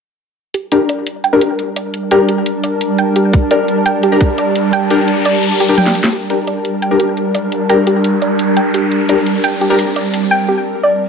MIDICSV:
0, 0, Header, 1, 8, 480
1, 0, Start_track
1, 0, Key_signature, -2, "minor"
1, 0, Tempo, 348837
1, 749, Time_signature, 4, 2, 24, 8
1, 15256, End_track
2, 0, Start_track
2, 0, Title_t, "Ambient pad"
2, 0, Program_c, 0, 92
2, 746, Note_on_c, 0, 67, 83
2, 975, Note_on_c, 0, 74, 76
2, 1038, Note_on_c, 0, 81, 86
2, 14185, Note_off_c, 0, 81, 0
2, 14187, Note_off_c, 0, 67, 0
2, 14187, Note_off_c, 0, 74, 0
2, 15256, End_track
3, 0, Start_track
3, 0, Title_t, "Synth pluck"
3, 0, Program_c, 1, 84
3, 746, Note_on_c, 1, 67, 84
3, 831, Note_off_c, 1, 67, 0
3, 1227, Note_on_c, 1, 74, 77
3, 1311, Note_off_c, 1, 74, 0
3, 1706, Note_on_c, 1, 79, 99
3, 1790, Note_off_c, 1, 79, 0
3, 1947, Note_on_c, 1, 67, 78
3, 2031, Note_off_c, 1, 67, 0
3, 2426, Note_on_c, 1, 74, 74
3, 2511, Note_off_c, 1, 74, 0
3, 2907, Note_on_c, 1, 79, 100
3, 2991, Note_off_c, 1, 79, 0
3, 3148, Note_on_c, 1, 67, 79
3, 3231, Note_off_c, 1, 67, 0
3, 3626, Note_on_c, 1, 74, 81
3, 3711, Note_off_c, 1, 74, 0
3, 4107, Note_on_c, 1, 79, 98
3, 4191, Note_off_c, 1, 79, 0
3, 4347, Note_on_c, 1, 67, 76
3, 4431, Note_off_c, 1, 67, 0
3, 4828, Note_on_c, 1, 74, 75
3, 4912, Note_off_c, 1, 74, 0
3, 5308, Note_on_c, 1, 79, 102
3, 5391, Note_off_c, 1, 79, 0
3, 5549, Note_on_c, 1, 67, 82
3, 5632, Note_off_c, 1, 67, 0
3, 6029, Note_on_c, 1, 74, 77
3, 6112, Note_off_c, 1, 74, 0
3, 6509, Note_on_c, 1, 79, 106
3, 6592, Note_off_c, 1, 79, 0
3, 6749, Note_on_c, 1, 67, 79
3, 6832, Note_off_c, 1, 67, 0
3, 7229, Note_on_c, 1, 74, 76
3, 7312, Note_off_c, 1, 74, 0
3, 7708, Note_on_c, 1, 67, 75
3, 7847, Note_off_c, 1, 67, 0
3, 7948, Note_on_c, 1, 79, 98
3, 8157, Note_off_c, 1, 79, 0
3, 8429, Note_on_c, 1, 67, 85
3, 8512, Note_off_c, 1, 67, 0
3, 8908, Note_on_c, 1, 74, 81
3, 8991, Note_off_c, 1, 74, 0
3, 9388, Note_on_c, 1, 79, 100
3, 9472, Note_off_c, 1, 79, 0
3, 9629, Note_on_c, 1, 67, 78
3, 9712, Note_off_c, 1, 67, 0
3, 10109, Note_on_c, 1, 74, 76
3, 10192, Note_off_c, 1, 74, 0
3, 10587, Note_on_c, 1, 79, 99
3, 10671, Note_off_c, 1, 79, 0
3, 10828, Note_on_c, 1, 67, 79
3, 10911, Note_off_c, 1, 67, 0
3, 11308, Note_on_c, 1, 74, 82
3, 11391, Note_off_c, 1, 74, 0
3, 11787, Note_on_c, 1, 79, 97
3, 11871, Note_off_c, 1, 79, 0
3, 12027, Note_on_c, 1, 67, 76
3, 12111, Note_off_c, 1, 67, 0
3, 12507, Note_on_c, 1, 74, 79
3, 12591, Note_off_c, 1, 74, 0
3, 12987, Note_on_c, 1, 79, 106
3, 13071, Note_off_c, 1, 79, 0
3, 13226, Note_on_c, 1, 67, 84
3, 13310, Note_off_c, 1, 67, 0
3, 13707, Note_on_c, 1, 74, 78
3, 13791, Note_off_c, 1, 74, 0
3, 14186, Note_on_c, 1, 79, 107
3, 14271, Note_off_c, 1, 79, 0
3, 14427, Note_on_c, 1, 67, 79
3, 14511, Note_off_c, 1, 67, 0
3, 14907, Note_on_c, 1, 74, 80
3, 14991, Note_off_c, 1, 74, 0
3, 15256, End_track
4, 0, Start_track
4, 0, Title_t, "Synth stab"
4, 0, Program_c, 2, 62
4, 987, Note_on_c, 2, 62, 82
4, 988, Note_on_c, 2, 67, 77
4, 988, Note_on_c, 2, 70, 89
4, 1058, Note_off_c, 2, 62, 0
4, 1058, Note_off_c, 2, 67, 0
4, 1058, Note_off_c, 2, 70, 0
4, 1827, Note_on_c, 2, 62, 87
4, 1827, Note_on_c, 2, 67, 82
4, 1827, Note_on_c, 2, 70, 101
4, 1897, Note_off_c, 2, 67, 0
4, 1897, Note_off_c, 2, 70, 0
4, 1898, Note_off_c, 2, 62, 0
4, 2906, Note_on_c, 2, 70, 108
4, 2907, Note_on_c, 2, 62, 94
4, 2907, Note_on_c, 2, 67, 90
4, 3019, Note_off_c, 2, 62, 0
4, 3019, Note_off_c, 2, 67, 0
4, 3019, Note_off_c, 2, 70, 0
4, 4828, Note_on_c, 2, 62, 83
4, 4828, Note_on_c, 2, 67, 77
4, 4828, Note_on_c, 2, 70, 92
4, 4898, Note_off_c, 2, 62, 0
4, 4898, Note_off_c, 2, 67, 0
4, 4898, Note_off_c, 2, 70, 0
4, 5669, Note_on_c, 2, 62, 91
4, 5669, Note_on_c, 2, 67, 83
4, 5669, Note_on_c, 2, 70, 101
4, 5738, Note_off_c, 2, 62, 0
4, 5738, Note_off_c, 2, 70, 0
4, 5739, Note_off_c, 2, 67, 0
4, 6748, Note_on_c, 2, 70, 105
4, 6749, Note_on_c, 2, 62, 98
4, 6749, Note_on_c, 2, 67, 89
4, 6860, Note_off_c, 2, 62, 0
4, 6860, Note_off_c, 2, 67, 0
4, 6860, Note_off_c, 2, 70, 0
4, 7829, Note_on_c, 2, 62, 92
4, 7829, Note_on_c, 2, 67, 83
4, 7830, Note_on_c, 2, 70, 96
4, 7899, Note_off_c, 2, 62, 0
4, 7899, Note_off_c, 2, 67, 0
4, 7899, Note_off_c, 2, 70, 0
4, 8669, Note_on_c, 2, 62, 84
4, 8669, Note_on_c, 2, 67, 76
4, 8669, Note_on_c, 2, 70, 90
4, 8738, Note_off_c, 2, 62, 0
4, 8738, Note_off_c, 2, 67, 0
4, 8738, Note_off_c, 2, 70, 0
4, 9507, Note_on_c, 2, 62, 93
4, 9507, Note_on_c, 2, 67, 84
4, 9507, Note_on_c, 2, 70, 101
4, 9578, Note_off_c, 2, 62, 0
4, 9578, Note_off_c, 2, 67, 0
4, 9578, Note_off_c, 2, 70, 0
4, 10588, Note_on_c, 2, 62, 99
4, 10588, Note_on_c, 2, 67, 90
4, 10588, Note_on_c, 2, 70, 105
4, 10700, Note_off_c, 2, 62, 0
4, 10700, Note_off_c, 2, 67, 0
4, 10700, Note_off_c, 2, 70, 0
4, 12508, Note_on_c, 2, 62, 86
4, 12508, Note_on_c, 2, 67, 79
4, 12508, Note_on_c, 2, 70, 92
4, 12578, Note_off_c, 2, 62, 0
4, 12578, Note_off_c, 2, 67, 0
4, 12578, Note_off_c, 2, 70, 0
4, 13346, Note_on_c, 2, 62, 96
4, 13347, Note_on_c, 2, 67, 88
4, 13347, Note_on_c, 2, 70, 102
4, 13417, Note_off_c, 2, 62, 0
4, 13417, Note_off_c, 2, 67, 0
4, 13417, Note_off_c, 2, 70, 0
4, 15256, End_track
5, 0, Start_track
5, 0, Title_t, "Synth drone"
5, 0, Program_c, 3, 95
5, 747, Note_on_c, 3, 55, 76
5, 748, Note_on_c, 3, 62, 73
5, 748, Note_on_c, 3, 70, 84
5, 8373, Note_off_c, 3, 55, 0
5, 8373, Note_off_c, 3, 62, 0
5, 8373, Note_off_c, 3, 70, 0
5, 8429, Note_on_c, 3, 55, 76
5, 8429, Note_on_c, 3, 62, 71
5, 8429, Note_on_c, 3, 70, 85
5, 12230, Note_off_c, 3, 62, 0
5, 14133, Note_off_c, 3, 55, 0
5, 14133, Note_off_c, 3, 70, 0
5, 15256, End_track
6, 0, Start_track
6, 0, Title_t, "Reverse cymbal"
6, 0, Program_c, 4, 119
6, 15147, Note_on_c, 4, 60, 77
6, 15256, Note_off_c, 4, 60, 0
6, 15256, End_track
7, 0, Start_track
7, 0, Title_t, "Riser"
7, 0, Program_c, 5, 103
7, 4587, Note_on_c, 5, 60, 74
7, 8427, Note_off_c, 5, 60, 0
7, 8428, Note_on_c, 5, 60, 79
7, 14188, Note_off_c, 5, 60, 0
7, 15256, End_track
8, 0, Start_track
8, 0, Title_t, "Drums"
8, 746, Note_on_c, 9, 42, 80
8, 884, Note_off_c, 9, 42, 0
8, 986, Note_on_c, 9, 42, 88
8, 1124, Note_off_c, 9, 42, 0
8, 1226, Note_on_c, 9, 42, 82
8, 1363, Note_off_c, 9, 42, 0
8, 1466, Note_on_c, 9, 42, 94
8, 1603, Note_off_c, 9, 42, 0
8, 1706, Note_on_c, 9, 42, 76
8, 1843, Note_off_c, 9, 42, 0
8, 1946, Note_on_c, 9, 42, 96
8, 2083, Note_off_c, 9, 42, 0
8, 2186, Note_on_c, 9, 42, 82
8, 2324, Note_off_c, 9, 42, 0
8, 2426, Note_on_c, 9, 42, 93
8, 2564, Note_off_c, 9, 42, 0
8, 2666, Note_on_c, 9, 42, 78
8, 2804, Note_off_c, 9, 42, 0
8, 2905, Note_on_c, 9, 42, 88
8, 3043, Note_off_c, 9, 42, 0
8, 3146, Note_on_c, 9, 42, 83
8, 3283, Note_off_c, 9, 42, 0
8, 3386, Note_on_c, 9, 42, 94
8, 3524, Note_off_c, 9, 42, 0
8, 3627, Note_on_c, 9, 42, 77
8, 3764, Note_off_c, 9, 42, 0
8, 3866, Note_on_c, 9, 42, 93
8, 4004, Note_off_c, 9, 42, 0
8, 4106, Note_on_c, 9, 42, 82
8, 4244, Note_off_c, 9, 42, 0
8, 4346, Note_on_c, 9, 42, 97
8, 4484, Note_off_c, 9, 42, 0
8, 4587, Note_on_c, 9, 42, 79
8, 4588, Note_on_c, 9, 36, 117
8, 4724, Note_off_c, 9, 42, 0
8, 4725, Note_off_c, 9, 36, 0
8, 4827, Note_on_c, 9, 42, 92
8, 4964, Note_off_c, 9, 42, 0
8, 5067, Note_on_c, 9, 42, 82
8, 5205, Note_off_c, 9, 42, 0
8, 5307, Note_on_c, 9, 42, 96
8, 5444, Note_off_c, 9, 42, 0
8, 5547, Note_on_c, 9, 42, 78
8, 5684, Note_off_c, 9, 42, 0
8, 5787, Note_on_c, 9, 42, 92
8, 5788, Note_on_c, 9, 36, 107
8, 5925, Note_off_c, 9, 42, 0
8, 5926, Note_off_c, 9, 36, 0
8, 6027, Note_on_c, 9, 42, 82
8, 6165, Note_off_c, 9, 42, 0
8, 6268, Note_on_c, 9, 42, 94
8, 6405, Note_off_c, 9, 42, 0
8, 6508, Note_on_c, 9, 42, 74
8, 6645, Note_off_c, 9, 42, 0
8, 6748, Note_on_c, 9, 42, 86
8, 6886, Note_off_c, 9, 42, 0
8, 6989, Note_on_c, 9, 42, 77
8, 7126, Note_off_c, 9, 42, 0
8, 7229, Note_on_c, 9, 42, 91
8, 7366, Note_off_c, 9, 42, 0
8, 7468, Note_on_c, 9, 42, 74
8, 7606, Note_off_c, 9, 42, 0
8, 7708, Note_on_c, 9, 42, 87
8, 7846, Note_off_c, 9, 42, 0
8, 7948, Note_on_c, 9, 42, 77
8, 7948, Note_on_c, 9, 48, 59
8, 8068, Note_on_c, 9, 38, 60
8, 8086, Note_off_c, 9, 42, 0
8, 8086, Note_off_c, 9, 48, 0
8, 8188, Note_on_c, 9, 42, 91
8, 8206, Note_off_c, 9, 38, 0
8, 8308, Note_on_c, 9, 38, 83
8, 8326, Note_off_c, 9, 42, 0
8, 8428, Note_on_c, 9, 42, 78
8, 8446, Note_off_c, 9, 38, 0
8, 8566, Note_off_c, 9, 42, 0
8, 8668, Note_on_c, 9, 42, 91
8, 8805, Note_off_c, 9, 42, 0
8, 8908, Note_on_c, 9, 42, 82
8, 9046, Note_off_c, 9, 42, 0
8, 9148, Note_on_c, 9, 42, 95
8, 9286, Note_off_c, 9, 42, 0
8, 9388, Note_on_c, 9, 42, 79
8, 9525, Note_off_c, 9, 42, 0
8, 9628, Note_on_c, 9, 42, 95
8, 9765, Note_off_c, 9, 42, 0
8, 9868, Note_on_c, 9, 42, 82
8, 10005, Note_off_c, 9, 42, 0
8, 10108, Note_on_c, 9, 42, 97
8, 10245, Note_off_c, 9, 42, 0
8, 10348, Note_on_c, 9, 42, 81
8, 10485, Note_off_c, 9, 42, 0
8, 10588, Note_on_c, 9, 42, 96
8, 10725, Note_off_c, 9, 42, 0
8, 10827, Note_on_c, 9, 42, 88
8, 10965, Note_off_c, 9, 42, 0
8, 11068, Note_on_c, 9, 42, 95
8, 11205, Note_off_c, 9, 42, 0
8, 11308, Note_on_c, 9, 42, 81
8, 11445, Note_off_c, 9, 42, 0
8, 11547, Note_on_c, 9, 42, 99
8, 11685, Note_off_c, 9, 42, 0
8, 11788, Note_on_c, 9, 42, 85
8, 11925, Note_off_c, 9, 42, 0
8, 12028, Note_on_c, 9, 42, 99
8, 12166, Note_off_c, 9, 42, 0
8, 12268, Note_on_c, 9, 42, 80
8, 12406, Note_off_c, 9, 42, 0
8, 12508, Note_on_c, 9, 42, 97
8, 12508, Note_on_c, 9, 82, 56
8, 12645, Note_off_c, 9, 42, 0
8, 12645, Note_off_c, 9, 82, 0
8, 12748, Note_on_c, 9, 42, 85
8, 12868, Note_on_c, 9, 82, 26
8, 12885, Note_off_c, 9, 42, 0
8, 12988, Note_off_c, 9, 82, 0
8, 12988, Note_on_c, 9, 42, 95
8, 12988, Note_on_c, 9, 82, 59
8, 13125, Note_off_c, 9, 42, 0
8, 13125, Note_off_c, 9, 82, 0
8, 13227, Note_on_c, 9, 42, 77
8, 13347, Note_on_c, 9, 82, 27
8, 13364, Note_off_c, 9, 42, 0
8, 13467, Note_off_c, 9, 82, 0
8, 13467, Note_on_c, 9, 42, 96
8, 13467, Note_on_c, 9, 82, 61
8, 13605, Note_off_c, 9, 42, 0
8, 13605, Note_off_c, 9, 82, 0
8, 13707, Note_on_c, 9, 42, 83
8, 13844, Note_off_c, 9, 42, 0
8, 13947, Note_on_c, 9, 42, 98
8, 13947, Note_on_c, 9, 82, 60
8, 14085, Note_off_c, 9, 42, 0
8, 14085, Note_off_c, 9, 82, 0
8, 15256, End_track
0, 0, End_of_file